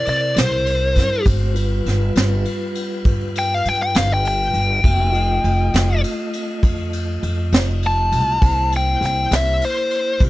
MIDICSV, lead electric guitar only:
0, 0, Header, 1, 2, 480
1, 0, Start_track
1, 0, Tempo, 597015
1, 1014, Time_signature, 12, 3, 24, 8
1, 8279, End_track
2, 0, Start_track
2, 0, Title_t, "Lead electric guitar"
2, 0, Program_c, 0, 29
2, 73, Note_on_c, 0, 74, 78
2, 296, Note_off_c, 0, 74, 0
2, 317, Note_on_c, 0, 72, 93
2, 1005, Note_off_c, 0, 72, 0
2, 2723, Note_on_c, 0, 79, 89
2, 2849, Note_off_c, 0, 79, 0
2, 2849, Note_on_c, 0, 77, 89
2, 2963, Note_off_c, 0, 77, 0
2, 2963, Note_on_c, 0, 79, 97
2, 3067, Note_off_c, 0, 79, 0
2, 3075, Note_on_c, 0, 79, 94
2, 3183, Note_off_c, 0, 79, 0
2, 3196, Note_on_c, 0, 77, 81
2, 3303, Note_off_c, 0, 77, 0
2, 3326, Note_on_c, 0, 79, 84
2, 3428, Note_off_c, 0, 79, 0
2, 3439, Note_on_c, 0, 79, 88
2, 4835, Note_off_c, 0, 79, 0
2, 6324, Note_on_c, 0, 81, 105
2, 7006, Note_off_c, 0, 81, 0
2, 7047, Note_on_c, 0, 79, 82
2, 7263, Note_off_c, 0, 79, 0
2, 7283, Note_on_c, 0, 79, 85
2, 7500, Note_off_c, 0, 79, 0
2, 7522, Note_on_c, 0, 76, 80
2, 7739, Note_off_c, 0, 76, 0
2, 7756, Note_on_c, 0, 72, 90
2, 8208, Note_off_c, 0, 72, 0
2, 8279, End_track
0, 0, End_of_file